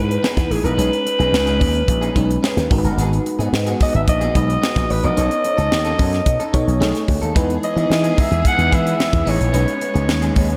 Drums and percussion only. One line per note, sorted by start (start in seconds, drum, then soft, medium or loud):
0.11 closed hi-hat soft
0.24 snare loud
0.37 kick medium
0.37 snare soft
0.37 closed hi-hat soft
0.51 open hi-hat medium
0.65 closed hi-hat soft
0.79 closed hi-hat medium
0.93 closed hi-hat soft
1.07 closed hi-hat medium
1.20 closed hi-hat soft
1.34 snare loud
1.47 closed hi-hat soft
1.61 kick medium
1.61 open hi-hat medium
1.75 closed hi-hat soft
1.88 kick medium
1.88 closed hi-hat medium
2.02 closed hi-hat soft
2.16 kick medium
2.16 closed hi-hat medium
2.31 closed hi-hat soft
2.44 snare loud
2.57 snare soft
2.57 closed hi-hat medium
2.71 kick loud
2.71 open hi-hat medium
2.85 closed hi-hat soft
2.99 closed hi-hat medium
3.13 closed hi-hat soft
3.26 closed hi-hat medium
3.40 closed hi-hat soft
3.54 snare loud
3.67 closed hi-hat soft
3.80 kick medium
3.80 open hi-hat medium
3.94 closed hi-hat soft
4.08 kick medium
4.08 closed hi-hat medium
4.21 closed hi-hat soft
4.35 kick medium
4.35 closed hi-hat medium
4.50 closed hi-hat soft
4.63 snare loud
4.76 kick medium
4.76 snare soft
4.76 closed hi-hat medium
4.90 open hi-hat medium
5.04 closed hi-hat soft
5.17 closed hi-hat medium
5.31 closed hi-hat soft
5.44 closed hi-hat medium
5.58 closed hi-hat soft
5.72 snare loud
5.85 closed hi-hat soft
5.99 kick medium
5.99 open hi-hat medium
6.13 snare soft
6.13 closed hi-hat soft
6.26 kick medium
6.26 closed hi-hat medium
6.40 closed hi-hat soft
6.54 kick medium
6.54 closed hi-hat medium
6.68 closed hi-hat soft
6.82 snare loud
6.95 snare soft
6.95 closed hi-hat soft
7.08 kick medium
7.08 open hi-hat medium
7.23 closed hi-hat soft
7.36 kick loud
7.36 closed hi-hat medium
7.50 closed hi-hat soft
7.63 closed hi-hat medium
7.77 closed hi-hat soft
7.92 snare loud
8.04 closed hi-hat soft
8.18 kick medium
8.18 open hi-hat medium
8.32 closed hi-hat soft
8.45 kick medium
8.45 closed hi-hat loud
8.59 closed hi-hat soft
8.72 kick medium
8.72 closed hi-hat medium
8.87 closed hi-hat soft
9.00 snare loud
9.13 kick medium
9.13 closed hi-hat medium
9.27 open hi-hat medium
9.41 closed hi-hat soft
9.54 closed hi-hat medium
9.68 closed hi-hat soft
9.81 closed hi-hat medium
9.96 closed hi-hat soft
10.09 snare loud
10.22 closed hi-hat soft
10.36 kick medium
10.36 open hi-hat medium
10.50 closed hi-hat soft